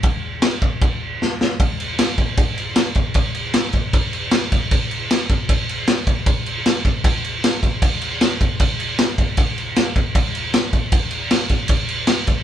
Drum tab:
CC |x-x-x---|xxxxxxxx|xxxxxxxx|xxxxxxxx|
SD |--o---oo|--o---o-|--o---o-|--o---o-|
BD |o--oo---|o--oo--o|o--oo--o|o--oo--o|

CC |xxxxxxxx|xxxxxxxx|xxxxxxxx|xxxxxxxx|
SD |--o---o-|--o---o-|--o---o-|--o---o-|
BD |o--oo--o|o--oo--o|o--oo--o|o--oo--o|